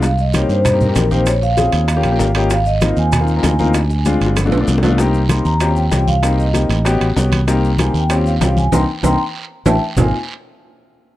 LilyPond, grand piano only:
\new Staff \with { instrumentName = "Grand piano" } { \time 4/4 \key aes \major \tempo 4 = 193 << { r1 | r2 r8 g''8 f''8 ees''8 | r1 | r2. d''4 |
r1 | r1 | r1 | <bes c' ees'>8 r8 <bes c' ees'>8 r4. <a cis' e'>8 r8 |
r1 | } \\ { r4 <bes c' ees' g'>4 r16 <bes c' ees' g'>16 r16 <bes c' ees' g'>8 r16 <bes c' ees' g'>8 | r4 <c' des' f' aes'>4 r16 <bes des' f' g'>16 r16 <bes des' f' g'>8 r16 <bes des' f' g'>8 | r4 <bes c' ees' f'>4 r16 <bes c' ees' f'>16 r16 <bes c' ees' f'>8 r16 <bes c' ees' f'>8 | r4 <aes c' d' f'>4 r16 <a b d' f'>16 r16 <a b d' f'>8 r16 <a b d' f'>8 |
<bes c' ees' g'>8. r16 <bes c' ees' g'>8. r16 <c' des' f' g'>8. r16 <c' des' f' g'>8. r16 | <bes c' ees' g'>8. r16 <bes c' ees' g'>8. r16 <b cis' fis' g'>8. r16 <b cis' fis' g'>8. r16 | <bes c' ees' g'>8. r16 <bes c' ees' g'>8. r16 <c' des' f' g'>8. r16 <c' des' f' g'>8. r16 | r1 |
<bes c' ees' f'>8 r2. r8 | } >> }